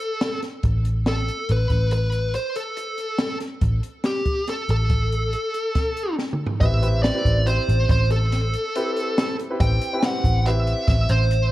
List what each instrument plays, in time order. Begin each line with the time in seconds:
Already playing: lead electric guitar A4
0.21 snare, closed hi-hat
0.42 snare, closed hi-hat
0.63 picked electric bass A1, kick, closed hi-hat
0.85 closed hi-hat
1.06 lead electric guitar A4, snare, closed hi-hat
1.28 closed hi-hat
1.49 picked electric bass A1, lead electric guitar B4, closed hi-hat
1.70 picked electric bass A1, kick, closed hi-hat
1.91 lead electric guitar B4, closed hi-hat
2.12 closed hi-hat
2.34 lead electric guitar C5, closed hi-hat
2.56 lead electric guitar A4, closed hi-hat
2.77 closed hi-hat
2.98 closed hi-hat
3.18 snare, closed hi-hat
3.40 snare, closed hi-hat
3.61 picked electric bass A1, kick, closed hi-hat
3.83 closed hi-hat
4.04 lead electric guitar G4, snare, closed hi-hat
4.25 kick, closed hi-hat
4.48 lead electric guitar A4, snare, closed hi-hat
4.69 picked electric bass A1, lead electric guitar A4, closed hi-hat
4.90 kick, closed hi-hat
5.12 closed hi-hat
5.33 closed hi-hat
5.54 closed hi-hat
5.75 kick, snare, closed hi-hat
5.97 closed hi-hat
6.18 snare
6.33 mid tom
6.46 floor tom
6.61 picked electric bass A1, grand piano C4 E4 G4 B4, lead electric guitar E5, kick, closed hi-hat
6.82 grand piano C4 E4 G4 B4, closed hi-hat
7.03 lead electric guitar D5, snare, closed hi-hat
7.14 grand piano C4 E4 G4 B4
7.25 picked electric bass A1, kick, closed hi-hat
7.47 grand piano C4 E4 G4 C5, lead electric guitar C5, closed hi-hat
7.69 picked electric bass A1, closed hi-hat
7.89 picked electric bass A1, lead electric guitar C5, kick, closed hi-hat
8.11 lead electric guitar A4, closed hi-hat
8.32 snare, closed hi-hat
8.53 closed hi-hat
8.75 grand piano C4 E4 G4 B4, closed hi-hat
8.96 closed hi-hat
9.18 snare, closed hi-hat
9.39 closed hi-hat
9.50 grand piano C4 E4 G4 B4
9.60 picked electric bass A1, lead electric guitar G5, kick, closed hi-hat
9.81 closed hi-hat
9.93 grand piano C4 E4 G4 B4
10.03 lead electric guitar F#5, snare, closed hi-hat
10.24 picked electric bass A1, kick, closed hi-hat
10.46 grand piano C4 E4 G4 B4, lead electric guitar E5, closed hi-hat
10.67 closed hi-hat
10.88 picked electric bass A1, lead electric guitar E5, kick, snare, closed hi-hat
11.09 picked electric bass A1, lead electric guitar C5, closed hi-hat
11.31 closed hi-hat